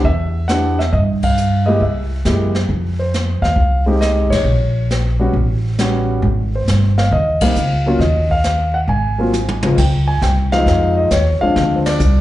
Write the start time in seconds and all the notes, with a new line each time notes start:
0.04 E2 E5, brush sweep
0.48 B3 D4 E4 G4 F#5, snare, hi-hat pedal
0.79 E5, snare
0.93 G2 D#5, brush sweep
1.23 F5, kick, ride
1.37 hi-hat pedal
1.66 G#3 A#3 E4 G4 D#5
1.80 C2 E5, brush sweep
2.25 F#2 G#3 A#3 E4 G4, snare, hi-hat pedal
2.55 snare
2.69 F2, brush sweep
2.99 C5
3.14 snare, hi-hat pedal
3.42 D#2 F5, snare
3.56 C2, brush sweep
3.86 G#3 C4 D#4 G4
4.01 D#5, snare, hi-hat pedal
4.30 A1 C#5, snare, ride
4.44 A#1, brush sweep
4.90 snare, hi-hat pedal
5.19 G3 B3 C#4 F#4
5.33 A1, brush sweep
5.78 G3 B3 C#4 F#4, snare, hi-hat pedal
6.22 G#1, brush sweep
6.55 C5
6.68 G1, snare, hi-hat pedal
6.98 F5, snare
7.12 D#2 D#5, brush sweep
7.41 G3 A#3 C4 D#4 F5, kick, ride
7.55 C#2, hi-hat pedal
7.86 F#3 A#3 C#4 F4
7.99 D#2 D#5, brush sweep, snare
8.30 F5, kick
8.44 snare, hi-hat pedal
8.74 F#5
8.88 G#1 G#5, brush sweep
9.18 F#3 A#3 C4 F4
9.33 hi-hat pedal, high tom
9.48 high tom
9.63 C#2 F3 G#3 C4 F4, high tom
9.78 C#2 G5, brush sweep, kick, snare, crash
10.08 G#5
10.22 C2 G5, snare, hi-hat pedal
10.52 F3 G#3 C4 D#4 F5, snare
10.66 F2, brush sweep, snare
10.97 D#5
11.11 D#2 C#5, snare, hi-hat pedal
11.41 F3 G#3 C4 D4 F5, muted upright bass stroke
11.56 D2, brush sweep, snare
11.76 C5
11.86 D5, snare, ride
12.00 C2, hi-hat pedal